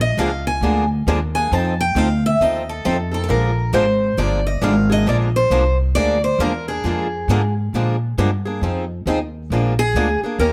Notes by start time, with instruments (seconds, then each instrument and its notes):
Already playing: upright bass A#1
0.01 steel-string acoustic guitar D#5
0.17 upright bass C#2, steel-string acoustic guitar D3 F3 G#3 A#3 D4 F4 G#4 A#4 F5
0.47 steel-string acoustic guitar G#5
0.61 upright bass D2, steel-string acoustic guitar D3 F3 G#3 A#3 D4 F4 G#4 A#4
1.07 upright bass D#2, steel-string acoustic guitar D3 F3 G#3 A#3 D4 F4 G#4 A#4
1.35 steel-string acoustic guitar A#3 D4 G#4 G#5
1.51 upright bass F2, steel-string acoustic guitar F3 C4 D#4 A4 A5
1.81 steel-string acoustic guitar G5
1.95 upright bass D2, steel-string acoustic guitar F3 C4 D#4 A4 F5
2.26 steel-string acoustic guitar E5
2.40 upright bass D#2, steel-string acoustic guitar F3 C4 D#4 A4 D#5
2.69 steel-string acoustic guitar A4
2.85 upright bass F2, steel-string acoustic guitar F3 C4 D#4 A4
3.11 steel-string acoustic guitar C4 D#4 A4
3.24 steel-string acoustic guitar A4
3.28 upright bass A#1, steel-string acoustic guitar D3 F3 G#3 A#3 D4 F4 G#4 A#4
3.73 upright bass G#1, steel-string acoustic guitar D3 F3 G#3 A#3 D4 F4 G#4 A#4 C5
4.18 upright bass G1, steel-string acoustic guitar D3 F3 G#3 A#3 D4 F4 G#4 A#4 D5
4.47 steel-string acoustic guitar D#5
4.61 upright bass G#1, steel-string acoustic guitar D3 F3 G#3 A#3 D4 F4 G#4 A#4 F5
4.90 steel-string acoustic guitar A#3 D4 G#4 D#5
5.06 upright bass A#1, steel-string acoustic guitar D3 F3 G#3 A#3 D4 F4 G#4 A#4 D5
5.36 steel-string acoustic guitar C5
5.50 upright bass C2, steel-string acoustic guitar D3 F3 G#3 A#3 D4 F4 G#4 A#4
5.95 upright bass D2, steel-string acoustic guitar D3 F3 G#3 A#3 D4 F4 G#4 A#4 D5
6.24 steel-string acoustic guitar C5
6.39 upright bass E2, steel-string acoustic guitar D3 F3 G#3 A#3 D4 F4 G#4 A#4
6.68 steel-string acoustic guitar A#3 D4 G#4
6.84 upright bass F2, steel-string acoustic guitar D3 F3 G#3 A#3 D4 F4 G#4 A#4
7.28 upright bass G#2, steel-string acoustic guitar D3 F3 G#3 A#3 D4 F4 G#4 A#4
7.73 upright bass A#2, steel-string acoustic guitar D3 F3 G#3 A#3 D4 F4 G#4 A#4
8.18 upright bass G2, steel-string acoustic guitar D3 F3 G#3 A#3 D4 F4 G#4 A#4
8.45 steel-string acoustic guitar A#3 D4 G#4
8.61 upright bass F2, steel-string acoustic guitar F3 C4 D#4 G#4
9.06 upright bass D#2, steel-string acoustic guitar F3 C4 D#4 G#4
9.50 upright bass A#1, steel-string acoustic guitar D3 F3 G#3 A#3 D4 F4 G#4 A#4
9.79 steel-string acoustic guitar G#4
9.94 upright bass D2, steel-string acoustic guitar D3 F3 G#3 A#3 D4 F4 G#4 A#4
10.22 steel-string acoustic guitar A#3 D4 G#4, muted upright bass stroke
10.38 upright bass D#2, steel-string acoustic guitar D#3 A#3 C#4 G4 A#4